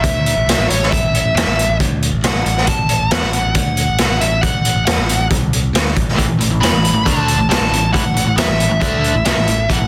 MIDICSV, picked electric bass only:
0, 0, Header, 1, 2, 480
1, 0, Start_track
1, 0, Tempo, 439239
1, 991, Time_signature, 4, 2, 24, 8
1, 10791, End_track
2, 0, Start_track
2, 0, Title_t, "Picked electric bass"
2, 0, Program_c, 0, 34
2, 39, Note_on_c, 0, 38, 92
2, 370, Note_off_c, 0, 38, 0
2, 395, Note_on_c, 0, 33, 76
2, 501, Note_off_c, 0, 33, 0
2, 507, Note_on_c, 0, 36, 86
2, 621, Note_off_c, 0, 36, 0
2, 637, Note_on_c, 0, 33, 83
2, 746, Note_off_c, 0, 33, 0
2, 752, Note_on_c, 0, 33, 65
2, 975, Note_off_c, 0, 33, 0
2, 1011, Note_on_c, 0, 33, 86
2, 1100, Note_off_c, 0, 33, 0
2, 1106, Note_on_c, 0, 33, 80
2, 1220, Note_off_c, 0, 33, 0
2, 1225, Note_on_c, 0, 33, 77
2, 1340, Note_off_c, 0, 33, 0
2, 1355, Note_on_c, 0, 33, 78
2, 1465, Note_off_c, 0, 33, 0
2, 1470, Note_on_c, 0, 40, 94
2, 1583, Note_off_c, 0, 40, 0
2, 1600, Note_on_c, 0, 33, 77
2, 1819, Note_off_c, 0, 33, 0
2, 1837, Note_on_c, 0, 33, 81
2, 1946, Note_off_c, 0, 33, 0
2, 1971, Note_on_c, 0, 38, 91
2, 2298, Note_off_c, 0, 38, 0
2, 2311, Note_on_c, 0, 33, 71
2, 2424, Note_off_c, 0, 33, 0
2, 2431, Note_on_c, 0, 36, 84
2, 2543, Note_off_c, 0, 36, 0
2, 2556, Note_on_c, 0, 33, 82
2, 2666, Note_off_c, 0, 33, 0
2, 2671, Note_on_c, 0, 33, 71
2, 2895, Note_off_c, 0, 33, 0
2, 2932, Note_on_c, 0, 33, 101
2, 3025, Note_off_c, 0, 33, 0
2, 3032, Note_on_c, 0, 33, 83
2, 3144, Note_off_c, 0, 33, 0
2, 3158, Note_on_c, 0, 33, 78
2, 3267, Note_off_c, 0, 33, 0
2, 3277, Note_on_c, 0, 33, 74
2, 3387, Note_off_c, 0, 33, 0
2, 3402, Note_on_c, 0, 40, 95
2, 3510, Note_off_c, 0, 40, 0
2, 3529, Note_on_c, 0, 33, 71
2, 3745, Note_off_c, 0, 33, 0
2, 3768, Note_on_c, 0, 33, 79
2, 3873, Note_off_c, 0, 33, 0
2, 3884, Note_on_c, 0, 38, 93
2, 4214, Note_off_c, 0, 38, 0
2, 4241, Note_on_c, 0, 33, 77
2, 4349, Note_off_c, 0, 33, 0
2, 4360, Note_on_c, 0, 36, 84
2, 4469, Note_off_c, 0, 36, 0
2, 4482, Note_on_c, 0, 33, 81
2, 4590, Note_off_c, 0, 33, 0
2, 4606, Note_on_c, 0, 33, 77
2, 4823, Note_off_c, 0, 33, 0
2, 4949, Note_on_c, 0, 33, 78
2, 5063, Note_off_c, 0, 33, 0
2, 5076, Note_on_c, 0, 33, 72
2, 5181, Note_off_c, 0, 33, 0
2, 5188, Note_on_c, 0, 33, 78
2, 5302, Note_off_c, 0, 33, 0
2, 5324, Note_on_c, 0, 40, 88
2, 5430, Note_off_c, 0, 40, 0
2, 5435, Note_on_c, 0, 33, 70
2, 5657, Note_off_c, 0, 33, 0
2, 5673, Note_on_c, 0, 33, 76
2, 5785, Note_off_c, 0, 33, 0
2, 5799, Note_on_c, 0, 36, 94
2, 6242, Note_off_c, 0, 36, 0
2, 6264, Note_on_c, 0, 38, 84
2, 6491, Note_off_c, 0, 38, 0
2, 6523, Note_on_c, 0, 33, 87
2, 6741, Note_off_c, 0, 33, 0
2, 6759, Note_on_c, 0, 33, 93
2, 6864, Note_off_c, 0, 33, 0
2, 6870, Note_on_c, 0, 33, 74
2, 6980, Note_off_c, 0, 33, 0
2, 6987, Note_on_c, 0, 33, 70
2, 7101, Note_off_c, 0, 33, 0
2, 7109, Note_on_c, 0, 33, 69
2, 7214, Note_off_c, 0, 33, 0
2, 7221, Note_on_c, 0, 40, 90
2, 7334, Note_off_c, 0, 40, 0
2, 7341, Note_on_c, 0, 33, 71
2, 7562, Note_off_c, 0, 33, 0
2, 7568, Note_on_c, 0, 33, 82
2, 7690, Note_off_c, 0, 33, 0
2, 7719, Note_on_c, 0, 38, 92
2, 8047, Note_off_c, 0, 38, 0
2, 8053, Note_on_c, 0, 33, 80
2, 8173, Note_off_c, 0, 33, 0
2, 8184, Note_on_c, 0, 36, 86
2, 8294, Note_off_c, 0, 36, 0
2, 8301, Note_on_c, 0, 33, 76
2, 8414, Note_off_c, 0, 33, 0
2, 8421, Note_on_c, 0, 33, 72
2, 8648, Note_off_c, 0, 33, 0
2, 8680, Note_on_c, 0, 33, 94
2, 8779, Note_off_c, 0, 33, 0
2, 8785, Note_on_c, 0, 33, 73
2, 8888, Note_off_c, 0, 33, 0
2, 8895, Note_on_c, 0, 33, 77
2, 9013, Note_off_c, 0, 33, 0
2, 9024, Note_on_c, 0, 33, 84
2, 9138, Note_off_c, 0, 33, 0
2, 9150, Note_on_c, 0, 40, 89
2, 9256, Note_off_c, 0, 40, 0
2, 9263, Note_on_c, 0, 33, 79
2, 9489, Note_off_c, 0, 33, 0
2, 9512, Note_on_c, 0, 33, 76
2, 9623, Note_off_c, 0, 33, 0
2, 9637, Note_on_c, 0, 38, 93
2, 9969, Note_off_c, 0, 38, 0
2, 9988, Note_on_c, 0, 33, 83
2, 10101, Note_off_c, 0, 33, 0
2, 10107, Note_on_c, 0, 36, 93
2, 10220, Note_off_c, 0, 36, 0
2, 10232, Note_on_c, 0, 33, 84
2, 10342, Note_off_c, 0, 33, 0
2, 10354, Note_on_c, 0, 33, 79
2, 10575, Note_off_c, 0, 33, 0
2, 10600, Note_on_c, 0, 33, 92
2, 10707, Note_off_c, 0, 33, 0
2, 10712, Note_on_c, 0, 33, 79
2, 10791, Note_off_c, 0, 33, 0
2, 10791, End_track
0, 0, End_of_file